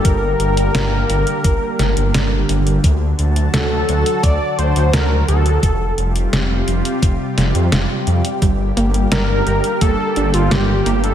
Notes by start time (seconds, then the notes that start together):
Already playing: D3 G3 A#3 G4
0.05 G1 A#4, kick, closed hi-hat
0.39 G1, closed hi-hat
0.57 closed hi-hat
0.74 G1, snare, closed hi-hat
1.10 G1, closed hi-hat
1.27 closed hi-hat
1.44 G1, kick, closed hi-hat
1.79 G1, snare, closed hi-hat
1.97 G1, closed hi-hat
2.14 G1, snare, closed hi-hat
2.49 G1, closed hi-hat
2.67 closed hi-hat
2.84 D2 F#3 F#4 A5, kick, closed hi-hat
3.19 D2, closed hi-hat
3.36 closed hi-hat
3.54 D2 A4, snare, closed hi-hat
3.89 D2, closed hi-hat
4.06 closed hi-hat
4.23 D2 D5, kick, closed hi-hat
4.58 D2 C5, closed hi-hat
4.76 D2, closed hi-hat
4.93 D2 A#4, snare, closed hi-hat
5.28 D2 A4, closed hi-hat
5.46 closed hi-hat
5.63 F1 C3 G3 F4 G4, kick, closed hi-hat
5.98 F1, closed hi-hat
6.16 closed hi-hat
6.32 F1, snare, closed hi-hat
6.68 F1, closed hi-hat
6.85 closed hi-hat
7.02 F1, kick, closed hi-hat
7.37 F1, snare, closed hi-hat
7.55 F2, closed hi-hat
7.72 F1, snare, closed hi-hat
8.07 F2, closed hi-hat
8.25 closed hi-hat
8.42 G1 D3 G3 A#3, kick, closed hi-hat
8.77 G1 A#3, closed hi-hat
8.94 closed hi-hat
9.12 G1 G3 A#4, snare, closed hi-hat
9.46 G1 G4, closed hi-hat
9.64 closed hi-hat
9.81 G1 A#3 A4, kick, closed hi-hat
10.16 G1 D4, closed hi-hat
10.34 G1 F4, closed hi-hat
10.51 G1 G3 G4, snare, closed hi-hat
10.86 G1 A#3, closed hi-hat
11.04 A4, closed hi-hat